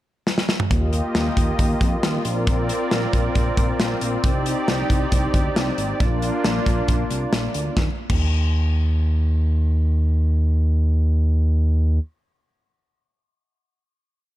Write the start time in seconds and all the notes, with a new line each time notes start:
0.27 snare
0.38 snare
0.49 snare
0.60 mid tom
0.71 D#2 A#3 F4 G4 D#5, kick, closed hi-hat
0.93 closed hi-hat
1.15 D#2, snare, closed hi-hat
1.37 D#2, kick, closed hi-hat
1.59 D#2, kick, closed hi-hat
1.81 F2, kick, closed hi-hat
2.03 D#2, snare, closed hi-hat
2.25 A#1 C4 A#4 D5, closed hi-hat
2.47 kick, closed hi-hat
2.69 closed hi-hat
2.91 A#1, snare, closed hi-hat
3.13 A#1, kick, closed hi-hat
3.35 A#1, kick, closed hi-hat
3.57 A#1, kick, closed hi-hat
3.80 A#1, snare, closed hi-hat
4.01 A#1, closed hi-hat
4.24 C2 D#4 G4 D5, kick, closed hi-hat
4.46 closed hi-hat
4.68 C2, snare, closed hi-hat
4.90 C2, kick, closed hi-hat
5.12 C2, kick, closed hi-hat
5.34 D2, kick, closed hi-hat
5.56 C2, snare, closed hi-hat
5.78 G#1, closed hi-hat
6.00 A#1 A#3 D4 F4, kick, closed hi-hat
6.22 closed hi-hat
6.44 A#1, snare, closed hi-hat
6.66 A#1, kick, closed hi-hat
6.88 A#1, kick, closed hi-hat
7.11 C2, closed hi-hat
7.33 A#1, snare, closed hi-hat
7.54 D2, closed hi-hat
7.77 D#2, kick, snare
8.10 D#2, kick, crash